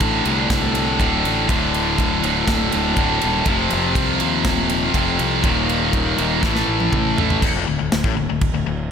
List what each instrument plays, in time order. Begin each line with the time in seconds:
Already playing: distorted electric guitar D2 A2 D3
0.00 fingered electric bass A1, kick, ride
0.24 fingered electric bass C2, distorted electric guitar D2 A2 D3, ride
0.50 fingered electric bass C2, kick, snare, ride
0.75 ride
0.99 fingered electric bass D1, distorted electric guitar D2 A2 D3, kick, ride
1.25 fingered electric bass A1, ride
1.48 fingered electric bass D1, distorted electric guitar D2 A2 D3, kick, ride
1.74 ride
1.98 fingered electric bass D1, kick, ride
2.22 fingered electric bass D1, distorted electric guitar D2 A2 D3, ride
2.48 fingered electric bass D1, kick, snare, ride
2.72 fingered electric bass D1, ride
2.97 fingered electric bass D1, distorted electric guitar D2 A2 D3, kick, ride
3.22 fingered electric bass D#1, ride
3.46 fingered electric bass F1, distorted electric guitar F2 C3 F3, kick, ride
3.71 fingered electric bass F1, ride
3.95 fingered electric bass C2, kick, ride
4.20 fingered electric bass D#2, distorted electric guitar F2 C3 F3, ride
4.45 fingered electric bass D#1, kick, snare, ride
4.70 ride
4.94 fingered electric bass F1, distorted electric guitar F2 C3 F3, kick, ride
5.19 fingered electric bass C2, ride
5.43 fingered electric bass D#1, distorted electric guitar D#2 A#2 D#3, kick, ride
5.69 ride
5.93 fingered electric bass D#1, kick, ride
6.18 fingered electric bass D#1, distorted electric guitar D#2 A#2 D#3, ride
6.43 fingered electric bass A1, distorted electric guitar A2 E3 A3, kick, snare
6.55 snare
6.68 fingered electric bass A1
6.80 high tom
6.93 fingered electric bass A1, kick, mid tom
7.18 fingered electric bass A1, distorted electric guitar A2 E3 A3, floor tom
7.30 floor tom
7.42 fingered electric bass D1, distorted electric guitar D2, kick, crash
7.55 fingered electric bass F1, distorted electric guitar F2
7.67 fingered electric bass D1, distorted electric guitar D2
7.79 fingered electric bass D1, distorted electric guitar D2
7.92 fingered electric bass D1, distorted electric guitar D2, snare, crash
8.04 fingered electric bass A1, distorted electric guitar A2, kick
8.16 fingered electric bass D1, distorted electric guitar D2
8.29 fingered electric bass D1, distorted electric guitar D2
8.41 kick, crash
8.54 fingered electric bass D1, distorted electric guitar D2
8.66 fingered electric bass D1, distorted electric guitar D2